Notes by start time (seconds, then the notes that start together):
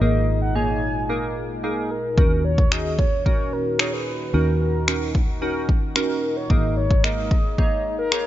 Already playing: A#2 G#3 D#4
0.01 G#1 A#3 D#4 G#4 A#4 D#5
0.42 F#5
0.55 A#3 D#4 G#4 C#5 G#5
1.09 A#3 D#4 G#4 A#4
1.63 A#3 D#4 G#4 A#4
1.91 A#4
2.17 D#2 D#3 C#4 D#4 F#4 A#4, kick
2.45 C#5
2.58 kick
2.71 C#4 D#4 F#4 G#4 D#5, finger snap
2.99 C#5, kick
3.25 C#4 D#4 F#4 A#4 C#5, kick
3.53 A#4
3.79 C#4 D#4 F#4 G#4 C#5, finger snap
3.93 B4
4.34 D#2 C#4 D#4 F#4 A#4
4.61 A#4
4.88 C#4 D#4 F#4 A#4, finger snap
5.15 kick
5.42 C#4 D#4 F#4 A#4
5.69 kick
5.96 C#4 D#4 F#4 A#4, finger snap
6.36 C#5
6.50 G#1 G#3 A#3 D#4 G#4 A#4 D#5, kick
6.77 C#5
6.91 kick
7.04 A#3 D#4 G#4 A#4 D#5, finger snap
7.31 kick
7.58 A#3 D#4 G#4 C#5 D#5, kick
7.99 A#4
8.12 A#3 D#4 G#4 C#5, finger snap